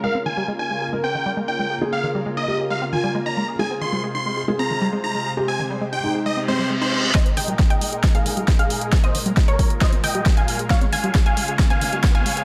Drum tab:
HH |----------------|----------------|----------------|----------------|
SD |----------------|----------------|----------------|----------------|
BD |----------------|----------------|----------------|----------------|

HH |xxoxxxoxxxoxxxox|xxoxxxoxxxoxxxox|xxoxxxoxxxoxxxox|
SD |o---o---o---o---|o---o---o---o---|o---o---o---o---|
BD |o---o---o---o---|o---o-o-o---o---|o---o---o---o---|